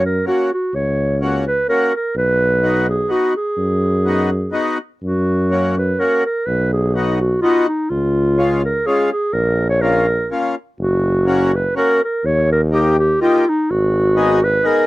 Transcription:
Already playing: F#2
0.06 A#4
0.25 A#3 C#4 F#4
0.53 F#4
0.74 C#2 C#5
1.21 A#3 C#4 F#4
1.47 B4
1.68 A#3 C#4 F#4 A#4
1.96 A#4
2.16 B1 B4
2.62 B3 D#4 F#4
2.90 G#4
3.09 B3 D#4 F#4
3.37 G#4
3.58 F#2
4.05 B3 D#4 F#4
4.52 B3 D#4 F#4
5.03 F#2 F#4
5.51 A#3 C#4 F#4
5.78 B4
5.99 A#3 C#4 F#4 A#4
6.25 A#4
6.46 B1 B4
6.73 G#4
6.94 B3 D#4 F#4
7.21 F#4
7.42 B3 D#4 F4 F#4
7.68 D#4
7.90 C#2 F4
8.37 G#3 C#4 F4
8.65 A#4
8.86 G#3 C#4 F4 G#4
9.12 G#4
9.33 A#1 A#4
9.69 C#5
9.81 A#3 C#4 F4 A#4
10.30 A#3 C#4 F4
10.79 F#1 F#4
11.26 A#3 C#4 F#4
11.55 B4
11.75 A#3 C#4 F#4 A#4
12.04 A#4
12.24 D#2 C#5
12.52 A#4
12.71 A#3 D#4 G4
13.00 G4
13.20 A#3 D#4 F4 G4
13.49 D#4
13.70 G#1 F#4
14.15 B3 D#4 G#4
14.44 B4
14.63 B3 D#4 G#4 A#4

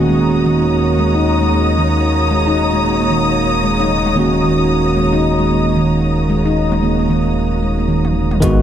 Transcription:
Already playing: D#1 D#3 A#3 C#4 F#4 C#5 D#5 A#5 D#6
0.08 G#3
0.19 A#3
0.35 A#3
0.46 D#3
0.99 G#3
1.15 D#4
1.41 G#3
1.52 A#3
1.68 A#3
1.78 D#3
2.31 G#3
2.47 D#4
2.74 G#3
2.84 A#3
3.00 A#3
3.11 D#3
3.64 G#3
3.80 D#4, mid tom
4.06 G#3, mid tom
4.15 D#3 A#3 C#4
4.19 F#4
4.33 A#3
4.44 D#3
4.97 G#3
5.13 D#4
5.39 G#3
5.50 A#3
5.66 A#3
5.76 D#3
6.29 G#3
6.46 D#4
6.72 G#3, mid tom
6.83 A#3
6.99 A#3
7.10 D#3
7.63 G#3
7.78 A#3
7.89 D#3
8.05 mid tom
8.31 mid tom
8.40 G#1 D#3 G#3 B3 F#4, kick, closed hi-hat, impact, shaker

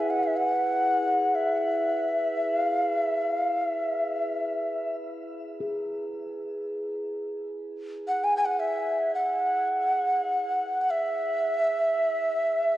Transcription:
Already playing: E4 G#4 B4
0.00 E5
0.10 F#5
0.23 E5
0.36 F#5
1.35 E5
2.61 F5
2.95 E5
3.32 F5
3.67 E5
5.61 G#4
8.08 F#5
8.24 G#5
8.37 G#5
8.45 F#5
8.59 E5
9.15 F#5
10.81 F#5
10.90 E5

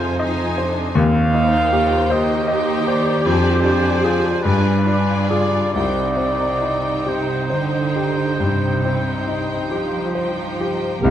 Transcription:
Already playing: F2 C3 D#4 F4 G#4 C5 G#5
0.20 D#4 C5 D#5 G#5
0.58 D4 C5
0.95 D#2 C4 F5
1.33 D#4 C5 G5
1.73 F4 G4
2.10 D#2 G4 C5 D#5
2.48 D#4 C5 D#5 G5
2.88 C5 D5
3.23 F2 D4 C5 D5 G#5
3.63 D4 D5 G#5
4.04 F4 G#4
4.43 G2 D4 F4 B4 D5 G#5
4.86 D4 F4 D5 G#5
5.30 F4 G#4 D5
5.73 C2 C3 D#4 C5 D5 G5
6.17 C4 D#4 C5 G5
6.62 D#4
7.06 C3 G4 C5
7.49 D3 D#4 C5 G5
7.96 G4
8.39 G2 C3
8.83 C4 D#4 C5 G5
9.27 D#4
9.71 F3 G4
10.15 D#4 C5 G5
10.61 G4
11.01 C2 C3 A#3 C4 G4 A#4

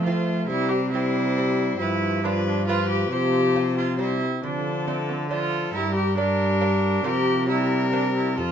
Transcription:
Already playing: F3
0.04 A3 C4 F4 C5
0.47 C3 G3 E4 C5
0.69 G4
0.91 G3 C4 E4 G4 C5
1.38 C4 G4
1.79 G2 F3 E4 B4
2.23 F3 B3 D4 F4 B4
2.46 D4
2.67 F3 B3 F4 B4
2.89 G4
3.10 C3 F3 G4 C5
3.56 C4 F4
3.77 F4
3.98 G3 C4 E4 G4 C5
4.42 D3 F3 D4 A4
4.87 A3 C4 D4
5.09 C4
5.30 F3 A3 D4 F4 A4
5.73 G2 G3 E4 A#4
5.95 G4
6.17 G3 A#3 D4 A#4
6.61 A#3 D4
7.04 C3 F3 A#3 F4 G4 A#4
7.49 G3 E4 A#4
7.92 A#3 C4 D4
8.16 E4
8.37 F2 F3 F4 A4

